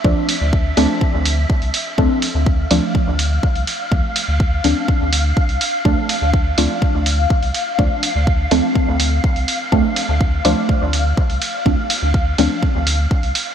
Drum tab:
RD |--x---x---x---x-|--x---x---x---x-|--x---x---x---x-|--x---x---x---x-|
HH |--o---o---o--oo-|--o---o---o--oo-|--o---o---o--oo-|--o---o---o--oo-|
BD |o---o---o---o---|o---o---o---o---|o---o---o---o---|o---o---o---o---|

RD |--x---x---x---x-|--x---x---x---x-|--x---x---x---x-|
HH |--o---o---o--oo-|--o---o---o--oo-|--o---o---o--oo-|
BD |o---o---o---o---|o---o---o---o---|o---o---o---o---|